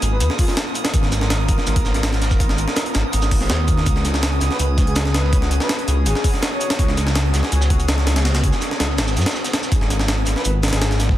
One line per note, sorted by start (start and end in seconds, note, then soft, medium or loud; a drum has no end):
0.00 0.22 G#1 medium
0.00 3.83 A#3 medium
0.00 9.68 B3 medium
0.00 3.83 F4 medium
0.00 0.91 G#4 medium
0.00 9.73 D#6 medium
0.00 closed hi-hat medium
0.00 shaker medium
0.11 0.17 B4 medium
0.20 0.29 D#2 medium
0.20 0.27 B4 medium
0.20 closed hi-hat medium
0.20 shaker medium
0.30 snare soft
0.39 0.45 F4 medium
0.39 kick medium
0.39 open hi-hat medium
0.39 shaker medium
0.48 0.54 F4 medium
0.48 snare soft
0.57 snare loud
0.57 closed hi-hat loud
0.57 shaker medium
0.67 closed hi-hat soft
0.75 closed hi-hat medium
0.75 shaker medium
0.84 snare loud
0.84 closed hi-hat medium
0.84 shaker medium
0.94 1.47 G#1 medium
0.94 3.84 A#4 medium
0.94 kick loud
0.94 closed hi-hat medium
0.94 shaker medium
1.03 snare soft
1.12 snare soft
1.12 closed hi-hat medium
1.12 shaker medium
1.21 snare medium
1.30 snare loud
1.30 closed hi-hat medium
1.30 shaker medium
1.40 closed hi-hat soft
1.48 1.57 G#1 medium
1.48 kick loud
1.48 closed hi-hat medium
1.48 shaker medium
1.58 snare soft
1.67 1.93 G#1 loud
1.67 snare soft
1.67 closed hi-hat medium
1.67 shaker loud
1.76 kick loud
1.76 closed hi-hat medium
1.85 snare medium
1.85 snare soft
1.85 shaker medium
1.94 2.66 G#1 medium
1.94 snare soft
1.94 closed hi-hat medium
2.03 snare loud
2.03 closed hi-hat medium
2.03 shaker medium
2.13 snare medium
2.13 closed hi-hat soft
2.21 snare soft
2.21 snare loud
2.21 closed hi-hat medium
2.21 shaker medium
2.31 kick loud
2.31 snare loud
2.31 shaker medium
2.40 kick loud
2.40 closed hi-hat medium
2.40 shaker medium
2.49 snare medium
2.58 closed hi-hat medium
2.58 shaker medium
2.68 snare medium
2.76 snare loud
2.76 closed hi-hat medium
2.76 shaker medium
2.86 closed hi-hat soft
2.94 3.03 G#1 medium
2.94 snare loud
2.94 closed hi-hat medium
2.94 shaker medium
3.13 3.49 G#1 loud
3.13 closed hi-hat medium
3.13 shaker medium
3.22 snare soft
3.22 shaker medium
3.31 kick medium
3.31 open hi-hat medium
3.31 shaker medium
3.41 snare soft
3.49 3.85 D#2 medium
3.49 snare loud
3.49 closed hi-hat medium
3.49 shaker medium
3.68 kick loud
3.68 closed hi-hat medium
3.68 shaker medium
3.78 snare soft
3.86 4.40 C#2 loud
3.86 9.68 C#4 medium
3.86 9.68 F#4 medium
3.86 9.68 G#4 medium
3.86 kick loud
3.86 closed hi-hat medium
3.86 shaker loud
3.96 snare soft
4.05 snare soft
4.05 closed hi-hat medium
4.05 shaker medium
4.14 snare medium
4.23 snare loud
4.23 closed hi-hat medium
4.23 shaker medium
4.32 closed hi-hat soft
4.41 4.50 C#2 medium
4.41 snare soft
4.41 closed hi-hat medium
4.41 shaker medium
4.51 4.56 B4 medium
4.51 snare soft
4.59 4.86 C#2 loud
4.59 4.66 B4 medium
4.59 closed hi-hat medium
4.59 shaker loud
4.78 kick medium
4.78 snare medium
4.78 closed hi-hat medium
4.78 shaker medium
4.87 5.59 C#2 medium
4.87 5.09 G#4 loud
4.87 closed hi-hat soft
4.95 snare loud
4.95 closed hi-hat medium
4.95 shaker medium
5.05 snare medium
5.05 closed hi-hat soft
5.14 5.36 B4 loud
5.14 snare loud
5.14 closed hi-hat medium
5.14 shaker medium
5.24 snare medium
5.33 kick loud
5.33 closed hi-hat medium
5.33 shaker medium
5.42 snare medium
5.51 closed hi-hat medium
5.51 shaker medium
5.60 5.82 B4 loud
5.60 snare medium
5.69 snare loud
5.69 closed hi-hat medium
5.69 shaker medium
5.79 closed hi-hat soft
5.88 6.08 C#2 medium
5.88 closed hi-hat medium
5.88 shaker medium
6.06 6.14 G#1 medium
6.06 6.28 G#4 loud
6.06 closed hi-hat medium
6.06 shaker medium
6.15 snare soft
6.24 kick medium
6.24 open hi-hat medium
6.24 shaker medium
6.34 snare soft
6.42 snare loud
6.42 closed hi-hat medium
6.42 shaker medium
6.52 6.88 C#5 loud
6.52 closed hi-hat soft
6.61 closed hi-hat medium
6.61 shaker medium
6.70 snare loud
6.70 closed hi-hat medium
6.70 shaker medium
6.79 7.33 C#2 loud
6.79 kick loud
6.79 closed hi-hat medium
6.79 shaker medium
6.88 snare soft
6.97 snare soft
6.97 closed hi-hat medium
6.97 shaker medium
7.07 snare medium
7.16 snare loud
7.16 closed hi-hat medium
7.16 shaker medium
7.25 closed hi-hat soft
7.34 7.42 C#2 medium
7.34 snare soft
7.34 snare loud
7.34 closed hi-hat medium
7.34 shaker medium
7.42 snare soft
7.42 closed hi-hat soft
7.52 7.78 C#2 loud
7.52 closed hi-hat medium
7.52 shaker medium
7.61 snare loud
7.61 shaker medium
7.70 kick medium
7.70 closed hi-hat medium
7.70 closed hi-hat soft
7.79 8.52 C#2 medium
7.79 closed hi-hat soft
7.79 shaker medium
7.88 snare loud
7.88 closed hi-hat medium
7.88 shaker medium
7.97 snare medium
7.97 closed hi-hat soft
8.07 snare loud
8.07 closed hi-hat medium
8.07 shaker medium
8.16 snare loud
8.16 closed hi-hat medium
8.25 snare loud
8.25 closed hi-hat medium
8.25 shaker medium
8.34 snare loud
8.34 closed hi-hat medium
8.34 shaker medium
8.44 kick loud
8.44 closed hi-hat medium
8.52 snare soft
8.52 shaker medium
8.61 snare soft
8.61 closed hi-hat medium
8.61 shaker medium
8.71 snare medium
8.80 9.00 C#2 medium
8.80 snare loud
8.80 closed hi-hat medium
8.80 shaker medium
8.89 snare soft
8.98 9.18 G#1 medium
8.98 snare loud
8.98 closed hi-hat medium
8.98 shaker medium
9.07 snare loud
9.07 shaker medium
9.16 9.25 F#2 loud
9.16 snare medium
9.16 closed hi-hat medium
9.16 shaker medium
9.20 snare medium
9.20 shaker medium
9.26 snare medium
9.26 snare loud
9.26 closed hi-hat medium
9.26 shaker medium
9.31 snare medium
9.31 shaker medium
9.35 snare loud
9.35 shaker medium
9.44 snare loud
9.44 closed hi-hat medium
9.44 shaker medium
9.53 snare loud
9.53 closed hi-hat medium
9.53 shaker medium
9.63 snare loud
9.63 shaker medium
9.72 10.25 G#1 loud
9.72 11.18 A#3 medium
9.72 11.18 B3 medium
9.72 11.18 F4 medium
9.72 11.18 G#4 loud
9.72 kick loud
9.72 closed hi-hat medium
9.72 shaker medium
9.81 snare soft
9.90 snare soft
9.90 closed hi-hat medium
9.90 shaker medium
9.99 snare medium
10.08 snare loud
10.08 closed hi-hat medium
10.08 shaker medium
10.17 closed hi-hat soft
10.26 10.35 G#1 medium
10.26 snare soft
10.26 closed hi-hat medium
10.26 shaker medium
10.36 10.42 B4 medium
10.36 snare soft
10.45 10.71 G#1 loud
10.45 10.51 B4 medium
10.45 closed hi-hat medium
10.45 shaker loud
10.63 snare medium
10.63 snare soft
10.63 closed hi-hat medium
10.63 shaker medium
10.68 snare medium
10.68 closed hi-hat medium
10.72 11.18 G#1 medium
10.72 10.94 G#4 loud
10.72 snare loud
10.72 closed hi-hat medium
10.81 snare loud
10.81 closed hi-hat medium
10.81 shaker medium
10.91 snare medium
10.91 closed hi-hat soft
10.99 snare soft
10.99 closed hi-hat medium
10.99 shaker medium
11.09 kick loud
11.09 snare medium